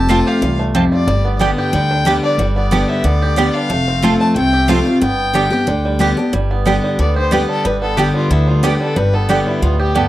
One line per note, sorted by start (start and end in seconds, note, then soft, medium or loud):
0.00 0.21 F1 medium
0.00 0.39 F2 medium
0.00 0.23 C4 medium
0.00 0.26 G4 medium
0.00 0.29 A5 loud
0.08 0.40 F3 medium
0.08 0.41 A3 medium
0.08 0.19 C4 loud
0.08 0.41 C4 loud
0.08 0.19 F4 loud
0.08 0.41 F4 medium
0.08 0.19 C5 loud
0.08 0.19 A5 loud
0.27 0.72 G4 medium
0.27 0.60 F5 medium
0.42 0.86 C2 medium
0.42 0.73 E2 medium
0.42 0.89 F4 medium
0.59 1.05 A3 medium
0.75 1.06 F2 medium
0.75 0.84 C4 medium
0.75 0.84 F4 medium
0.75 1.08 G4 medium
0.75 0.84 C5 medium
0.75 0.85 A5 loud
0.92 1.08 F4 medium
0.92 1.38 D5 medium
1.07 1.51 G1 medium
1.07 1.70 G2 medium
1.07 1.73 G3 medium
1.25 2.56 B3 medium
1.39 1.71 D3 medium
1.39 1.72 G3 medium
1.39 1.50 B3 medium
1.39 1.72 B3 medium
1.39 1.87 D4 medium
1.39 1.50 G4 loud
1.39 1.72 G4 medium
1.39 1.50 D5 loud
1.39 1.50 G5 loud
1.58 2.03 G4 medium
1.58 2.19 G5 loud
1.73 2.17 D2 medium
1.73 2.04 D3 medium
1.73 2.05 G3 medium
1.91 2.22 D4 medium
2.05 2.37 D3 medium
2.05 2.37 G3 medium
2.05 2.38 G3 medium
2.05 2.15 B3 medium
2.05 2.38 B3 medium
2.05 2.16 G4 loud
2.05 2.38 G4 loud
2.05 2.16 D5 loud
2.05 2.16 G5 medium
2.23 2.69 D4 medium
2.23 2.54 D5 loud
2.38 2.82 G1 medium
2.38 3.01 G2 medium
2.38 2.86 G3 medium
2.56 3.02 B3 medium
2.56 2.90 D5 medium
2.71 3.03 D3 medium
2.71 3.03 G3 medium
2.71 2.81 B3 loud
2.71 3.03 B3 medium
2.71 3.18 D4 medium
2.71 2.81 G4 loud
2.71 3.04 G4 medium
2.71 2.81 D5 loud
2.71 2.81 G5 loud
2.88 3.35 G3 medium
2.88 3.06 E5 medium
3.04 3.48 D2 medium
3.04 3.35 D3 loud
3.04 3.51 B3 medium
3.04 3.55 D5 loud
3.22 3.67 G4 medium
3.36 3.68 D3 medium
3.36 3.69 G3 loud
3.36 3.70 G3 medium
3.36 3.47 B3 medium
3.36 3.69 B3 medium
3.36 3.47 G4 loud
3.36 3.69 G4 loud
3.36 3.47 D5 loud
3.36 3.47 G5 loud
3.54 3.71 D4 medium
3.54 4.19 F5 loud
3.70 4.14 F1 medium
3.70 4.33 F2 medium
3.70 4.17 A3 medium
3.88 4.33 C4 medium
4.02 4.34 F3 medium
4.02 4.34 A3 medium
4.02 4.12 C4 loud
4.02 4.35 C4 medium
4.02 4.13 F4 loud
4.02 4.50 F4 medium
4.02 4.35 F4 medium
4.02 4.13 C5 loud
4.02 4.13 A5 loud
4.19 4.66 A3 medium
4.19 4.34 A5 loud
4.36 4.80 C2 medium
4.36 4.99 C3 medium
4.36 4.83 C4 medium
4.36 4.70 G5 loud
4.53 4.99 G4 medium
4.68 4.85 F3 medium
4.68 4.85 A3 medium
4.68 5.02 A3 medium
4.68 4.78 C4 loud
4.68 4.85 C4 loud
4.68 4.78 F4 loud
4.68 4.84 F4 loud
4.68 4.78 C5 loud
4.68 5.01 F5 loud
4.68 4.78 A5 medium
4.85 5.02 C4 soft
4.85 5.01 F4 medium
4.85 5.02 F4 medium
5.01 5.46 G1 medium
5.01 5.64 G2 medium
5.01 5.48 B3 medium
5.01 5.96 G5 loud
5.33 5.50 D3 medium
5.33 5.51 G3 medium
5.33 5.44 B3 medium
5.33 5.51 B3 medium
5.33 5.67 D4 medium
5.33 5.44 G4 loud
5.33 5.49 G4 loud
5.33 5.44 D5 loud
5.33 5.44 G5 loud
5.50 5.67 B3 medium
5.50 5.66 G4 medium
5.50 5.98 G4 medium
5.67 6.12 D2 medium
5.67 5.98 D3 medium
5.67 6.14 D4 medium
5.85 6.30 G3 medium
5.99 6.16 D3 medium
5.99 6.16 G3 medium
5.99 6.09 B3 medium
5.99 6.17 B3 medium
5.99 6.10 G4 loud
5.99 6.34 G4 medium
5.99 6.16 G4 loud
5.99 6.10 D5 medium
5.99 6.10 G5 loud
6.17 6.33 B3 medium
6.17 6.33 D4 medium
6.17 6.32 G4 medium
6.33 6.77 G1 medium
6.33 6.96 G2 medium
6.33 6.83 G3 medium
6.51 6.99 B3 medium
6.65 6.97 D3 medium
6.65 6.98 G3 medium
6.65 6.75 B3 medium
6.65 6.98 B3 medium
6.65 7.49 D4 medium
6.65 6.76 G4 loud
6.65 6.98 G4 medium
6.65 6.76 D5 loud
6.65 6.76 G5 loud
6.84 7.64 G3 medium
6.99 7.43 D2 medium
6.99 7.30 D3 medium
6.99 7.32 B3 medium
6.99 7.15 D5 medium
7.16 7.97 G4 medium
7.16 7.34 C5 medium
7.31 7.63 D3 medium
7.31 7.63 G3 medium
7.31 7.41 B3 medium
7.31 7.82 B3 medium
7.31 7.64 B3 loud
7.31 7.41 G4 loud
7.31 7.64 G4 loud
7.31 7.49 B4 medium
7.31 7.41 D5 medium
7.31 7.42 G5 loud
7.49 8.63 D4 medium
7.49 7.67 A4 loud
7.65 8.09 G1 medium
7.65 8.28 G2 medium
7.65 8.14 G3 medium
7.65 7.81 B4 medium
7.81 8.30 B3 medium
7.81 7.99 A4 loud
7.97 8.29 D3 medium
7.97 8.29 G3 medium
7.97 8.07 B3 medium
7.97 8.30 B3 medium
7.97 8.14 G4 medium
7.97 8.44 G4 medium
7.97 8.07 G4 medium
7.97 8.30 G4 medium
7.97 8.07 D5 loud
7.97 8.07 G5 loud
8.14 8.46 G3 medium
8.14 8.32 F4 medium
8.30 8.75 D2 medium
8.30 8.62 D3 medium
8.30 8.77 B3 medium
8.30 8.49 E4 medium
8.47 8.79 G3 medium
8.47 8.66 F4 medium
8.63 8.95 D3 medium
8.63 8.95 G3 medium
8.63 8.73 B3 loud
8.63 8.95 B3 loud
8.63 9.10 D4 medium
8.63 8.73 G4 loud
8.63 8.80 G4 medium
8.63 8.96 G4 loud
8.63 8.73 D5 loud
8.63 8.73 G5 loud
8.80 8.95 G3 medium
8.80 8.99 A4 medium
8.96 9.40 G1 loud
8.96 9.59 G2 medium
8.96 9.43 G3 medium
8.96 9.16 B4 loud
9.14 9.59 B3 medium
9.14 9.31 A4 medium
9.29 9.61 D3 medium
9.29 9.61 G3 medium
9.29 9.39 B3 loud
9.29 9.61 B3 medium
9.29 9.76 D4 medium
9.29 9.39 G4 loud
9.29 9.49 G4 medium
9.29 9.61 G4 medium
9.29 9.39 D5 loud
9.29 9.39 G5 loud
9.46 9.92 G3 medium
9.46 9.64 E4 medium
9.62 10.06 D2 medium
9.62 9.94 A2 medium
9.62 9.94 B3 medium
9.62 9.79 F4 medium
9.79 10.08 G4 medium
9.79 9.98 G4 medium
9.95 10.08 G2 medium
9.95 10.04 B3 medium
9.95 10.08 B3 medium
9.95 10.05 G4 medium
9.95 10.08 A4 medium
9.95 10.05 D5 loud
9.95 10.05 G5 loud